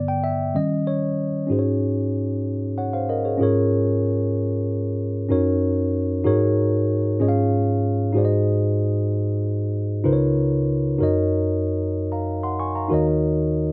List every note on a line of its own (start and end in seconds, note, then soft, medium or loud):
0.00 0.51 G2 medium
0.00 0.51 D3 medium
0.00 0.51 B3 medium
0.00 0.57 D5 medium
0.08 0.15 G5 medium
0.24 0.56 E5 loud
0.54 0.97 D#3 medium
0.54 0.97 G3 medium
0.54 0.97 C#4 medium
0.54 0.88 D#5 loud
0.87 1.46 C#5 medium
1.47 3.36 G#2 medium
1.47 3.35 C#4 medium
1.47 3.36 D#4 medium
1.47 3.36 F#4 medium
1.51 2.44 G#4 medium
1.51 1.58 C5 medium
1.59 2.48 C#5 medium
2.78 2.93 C#5 medium
2.78 2.92 F#5 medium
2.93 3.08 C5 medium
2.93 3.08 F5 medium
3.09 3.24 A#4 medium
3.09 3.24 D#5 medium
3.25 3.39 G#4 soft
3.25 3.42 C#5 medium
3.38 5.27 G#2 medium
3.38 5.25 C#4 medium
3.38 5.26 F4 medium
3.38 5.27 G#4 medium
3.42 5.28 A#4 medium
3.42 5.28 C#5 medium
5.29 6.21 F#2 medium
5.29 6.25 C#4 medium
5.29 6.23 D#4 medium
5.29 6.23 F#4 medium
5.29 6.25 A#4 medium
5.29 6.26 C#5 medium
6.24 7.17 G#2 medium
6.24 7.20 D#4 medium
6.24 7.20 F#4 medium
6.24 7.20 G#4 medium
6.24 7.21 A#4 medium
6.24 7.20 C#5 loud
7.20 8.12 G#2 medium
7.20 8.15 C#4 medium
7.20 8.15 F4 medium
7.20 8.14 G#4 medium
7.20 8.16 C#5 medium
7.20 7.28 D#5 medium
7.28 8.20 F5 medium
8.13 10.02 G#2 medium
8.13 10.01 D#4 medium
8.13 10.01 F#4 medium
8.13 10.02 G#4 medium
8.13 10.03 C5 medium
8.18 8.23 D5 medium
8.25 10.07 D#5 medium
10.04 10.97 C#2 medium
10.04 10.96 C#3 medium
10.04 10.97 D#4 medium
10.04 11.00 F4 medium
10.04 10.99 A#4 medium
10.04 11.01 B4 medium
10.04 10.13 C5 medium
10.13 11.01 C#5 medium
10.98 12.87 F#2 medium
10.98 12.86 D#4 medium
10.98 12.86 F#4 medium
10.98 12.87 A#4 medium
11.02 12.88 C#5 medium
11.02 12.88 D#5 medium
12.12 12.42 F5 medium
12.12 12.42 A#5 medium
12.43 12.59 F#5 medium
12.43 12.59 C6 medium
12.60 12.75 G#5 medium
12.60 12.75 C#6 medium
12.76 13.06 F5 soft
12.76 13.05 A#5 medium
12.88 13.72 D#2 medium
12.88 13.72 D#3 medium
12.88 13.72 D#4 medium
12.88 13.72 F#4 medium
12.88 13.72 A#4 medium
12.88 13.72 C#5 medium
12.94 13.72 D#5 medium